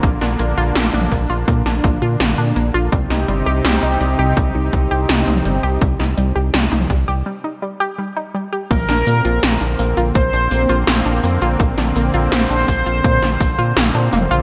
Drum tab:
CC |----------------|----------------|----------------|x---------------|
HH |x-x-x-x-x-x-x-x-|x-x-x-x-x-x-x-x-|x-x-x-x---------|xxoxxxoxxxoxxxox|
SH |----------------|----------------|----------------|xxxxxxxxxxxxxxxx|
SD |-o--o----o--o---|-o--o-------o---|-o--o-----------|-o--o-------o---|
T2 |-----o----------|-------------o--|-----o----------|o---------------|
BD |o-----o-o-o-----|o-------o-o-----|o-----o---------|o-------o-------|

CC |----------------|
HH |xxoxxxoxxxoxxxox|
SH |xxxxxxxxxxxxxxxx|
SD |-o--o----o--o---|
T2 |--------------o-|
BD |o-----o-o-o-----|